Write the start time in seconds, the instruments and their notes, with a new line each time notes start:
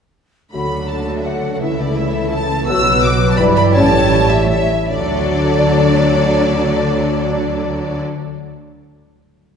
0.52 double bass section D2, cello section D3, harp D3, bassoon F#3, viola section A3 D4, french horn section A3 F#4, violin section F#4 A4 B5, clarinet A4, flute section B5
0.72 harp A3
0.88 harp F#4, flute section A5, violin section A5
1.08 harp A4
1.14 flute section E5, violin section E5
1.25 harp F#4, violin section F#5, flute section F#5
1.43 harp A3
1.52 flute section F#5, violin section F#5
1.61 double bass section C#2, cello section C#3, harp C#3, bassoon E3, french horn section A3 E4, violin section E4 E5, viola section E4, flute section E5
1.78 harp A3, flute section D5, violin section D5
1.97 harp E4, violin section E5, flute section E5
2.14 harp A4
2.31 harp E4, flute section A5, violin section A5
2.49 harp A3
2.66 double bass section B1, harp B2, cello section B2, viola section F#3 B3, french horn section F#3 F#4, bassoon F#3, violin section F#4 B4 E6, clarinet B4, flute section E6
2.85 harp F#3
3.03 harp F#4, flute section D6, violin section D6
3.21 harp B4
3.29 flute section A5, violin section A5
3.37 double bass section G1, cello section G2, harp G2, viola section E3 E4, bassoon E3, french horn section E3 D4, violin section G4 D5 B5, clarinet D5, flute section B5
3.56 harp E4 D5, violin section B5, flute section B5
3.73 double bass section A1, harp A2, cello section A2, bassoon G3, french horn section G3 C#4, clarinet C#5, violin section C#5 A5, flute section A5
3.94 harp G3
4.12 harp E4
4.29 harp G4, violin section E5, flute section E5
4.49 harp C#5, flute section E5, violin section E5
4.72 harp E4
4.89 double bass section D2, cello section D3, harp D3, bassoon F#3, viola section F#3 D4, french horn section F#3 D4, violin section A4 D5, flute section D5, clarinet D5
4.98 harp A3
5.04 harp D4
5.11 harp F#4
5.19 harp D5
5.26 harp F#5